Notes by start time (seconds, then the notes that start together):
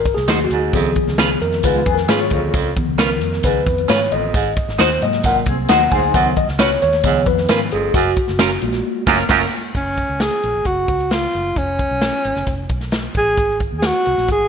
Already playing: G#1 A#4
0.05 kick, closed hi-hat
0.15 C2 G#4, snare
0.28 D#2 C3 F#3 A#3 D#4 F#4 C5, snare, closed hi-hat, tambourine
0.44 F#4
0.51 D2 G#2, closed hi-hat
0.73 C#2 F2 D#3 F3 B3 G#4, kick, closed hi-hat, tambourine
0.96 kick, closed hi-hat
1.07 C#2, snare
1.18 C#4 F4 B4, snare, closed hi-hat, tambourine
1.41 F2 A#4, closed hi-hat
1.53 snare, closed hi-hat
1.63 C#2 G#2 G#3 F4 B4, kick, closed hi-hat, tambourine
1.86 F2 B3 G#4, kick, closed hi-hat
1.94 A#4, snare, closed hi-hat
2.08 G#2 C#4 F4 G#4 B4 C#5, snare, closed hi-hat, tambourine
2.30 D2 F2, kick, closed hi-hat
2.54 C#2 F2, kick, closed hi-hat, tambourine
2.76 D#3 F3 B3, kick, closed hi-hat
2.88 C#2
2.98 C#4 F4 A#4 B4, snare, closed hi-hat, tambourine
3.21 F2, closed hi-hat
3.33 snare
3.43 C#2 G#2 B4, kick, closed hi-hat, tambourine
3.66 F2, kick, closed hi-hat
3.78 closed hi-hat
3.88 G#2 C#4 F4 B4 C#5, snare, closed hi-hat, tambourine
4.12 A1 F2 D#5, closed hi-hat
4.34 G#1 G#2, kick, closed hi-hat, tambourine
4.56 kick, closed hi-hat
4.68 G#1, snare
4.78 D#2 D#4 F#4 C5, snare, closed hi-hat, tambourine
5.01 G#2 C3 F#3 A#3 D#5, closed hi-hat
5.13 snare, closed hi-hat
5.23 G#1 A#2 F#5, kick, closed hi-hat, tambourine
5.46 C2 C4 G#4, kick, closed hi-hat
5.69 D#2 D#4 F#4 A#4 C5 F#5, snare, closed hi-hat, tambourine
5.91 D2 G#2 D#4 C5 G#5, kick, open hi-hat
6.14 C#2 F#2 D#3 F#3 B3 F#5, kick, closed hi-hat, tambourine
6.36 D#5, kick, closed hi-hat
6.48 C#2, snare
6.59 C#4 F#4 B4 C#5, snare, closed hi-hat, tambourine
6.82 D#2 C#5, closed hi-hat
6.93 snare, closed hi-hat
7.03 C#2 G#2 D#3 F3 B3, kick, closed hi-hat, tambourine
7.26 F2 B4, kick, closed hi-hat
7.38 snare
7.49 G#2 C#4 F4 A#4 B4, snare, closed hi-hat, tambourine
7.71 G1 F2 G#4, closed hi-hat
7.94 F#1 F#2 F#4, kick, closed hi-hat, tambourine
8.16 kick, closed hi-hat
8.28 F#1, snare
8.39 C#4 F4 A#4, snare, closed hi-hat, tambourine
8.61 A#1 G#3 A#3 F4, closed hi-hat
8.73 snare, closed hi-hat
9.07 F#1 F#2 C#4 F4 A#4, kick, snare, crash
9.29 F#1 F#2 C#4 F4 A#4, kick, snare, crash
9.75 F#1 C#4, kick, closed hi-hat
9.97 kick, closed hi-hat
10.10 C#2
10.20 G#4, snare, closed hi-hat
10.43 A#1, closed hi-hat
10.55 G#1
10.65 F#1 F#4, kick, closed hi-hat
10.88 C#2, kick, closed hi-hat
11.00 closed hi-hat
11.11 F4, snare, closed hi-hat
11.33 F#1, closed hi-hat
11.56 F1 C#4, kick, closed hi-hat
11.79 kick, closed hi-hat
11.91 B1
12.01 snare, closed hi-hat
12.24 G#1, closed hi-hat
12.36 F#1, snare
12.47 F1, kick, closed hi-hat
12.69 B1, kick, closed hi-hat
12.81 snare, closed hi-hat
12.92 snare, closed hi-hat
13.14 A1 G#4, kick, closed hi-hat
13.37 G#1, kick, closed hi-hat
13.60 kick, closed hi-hat
13.72 D#2
13.78 G#4, snare
13.82 F#4, closed hi-hat
14.06 C2, closed hi-hat
14.17 A#1, snare
14.28 G#1 G#4, kick, closed hi-hat